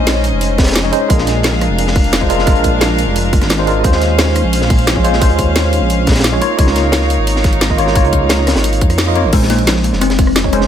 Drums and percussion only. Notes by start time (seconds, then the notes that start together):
0.07 snare, closed hi-hat
0.24 closed hi-hat, open hi-hat
0.41 closed hi-hat
0.58 kick, snare, closed hi-hat
0.63 snare, closed hi-hat
0.67 cross-stick, snare, closed hi-hat
0.71 snare, closed hi-hat
0.76 snare, closed hi-hat
0.93 closed hi-hat
1.10 kick, closed hi-hat
1.18 snare
1.27 snare, closed hi-hat
1.43 snare, closed hi-hat
1.52 snare
1.61 cross-stick, closed hi-hat
1.78 closed hi-hat
1.87 snare
1.95 kick, closed hi-hat, open hi-hat
2.04 closed hi-hat
2.13 snare, closed hi-hat
2.21 kick
2.30 closed hi-hat
2.39 snare
2.47 kick, closed hi-hat
2.55 closed hi-hat
2.64 kick, closed hi-hat
2.81 snare, closed hi-hat
2.98 closed hi-hat, open hi-hat
3.16 closed hi-hat
3.33 kick, closed hi-hat
3.42 cross-stick, snare, closed hi-hat
3.50 snare, closed hi-hat
3.67 closed hi-hat
3.84 kick, closed hi-hat
3.92 snare
4.01 snare, closed hi-hat
4.18 snare, closed hi-hat
4.27 snare
4.35 cross-stick, closed hi-hat
4.53 closed hi-hat
4.61 snare
4.70 kick, closed hi-hat, open hi-hat
4.79 closed hi-hat
4.87 snare, closed hi-hat
4.96 kick
5.04 closed hi-hat
5.13 snare
5.21 kick, closed hi-hat
5.29 closed hi-hat
5.39 kick, closed hi-hat
5.56 snare, closed hi-hat
5.73 closed hi-hat, open hi-hat
5.90 closed hi-hat
6.07 kick, snare, closed hi-hat
6.11 snare, closed hi-hat
6.15 cross-stick, snare, closed hi-hat
6.20 snare, closed hi-hat
6.24 snare, closed hi-hat
6.42 closed hi-hat
6.59 kick, closed hi-hat
6.67 snare
6.76 snare, closed hi-hat
6.92 snare, closed hi-hat
7.01 snare
7.10 closed hi-hat
7.27 closed hi-hat
7.36 snare
7.44 kick, snare, closed hi-hat
7.53 closed hi-hat
7.61 snare, closed hi-hat
7.70 kick
7.78 closed hi-hat
7.87 snare
7.96 kick, closed hi-hat
8.05 closed hi-hat
8.13 kick, closed hi-hat
8.29 snare, closed hi-hat
8.47 cross-stick, snare, closed hi-hat, open hi-hat
8.56 snare, closed hi-hat
8.64 closed hi-hat
8.73 closed hi-hat
8.81 kick, closed hi-hat
8.90 cross-stick, closed hi-hat
8.98 snare, closed hi-hat
9.07 cross-stick
9.16 closed hi-hat
9.33 kick, closed hi-hat, crash
9.42 snare
9.50 snare, closed hi-hat
9.59 closed hi-hat
9.67 snare, closed hi-hat
9.76 snare
9.84 closed hi-hat
9.93 snare
10.02 cross-stick, closed hi-hat
10.10 snare, closed hi-hat
10.19 kick, closed hi-hat, open hi-hat
10.27 cross-stick
10.36 snare, closed hi-hat
10.44 kick
10.53 cross-stick, closed hi-hat
10.61 snare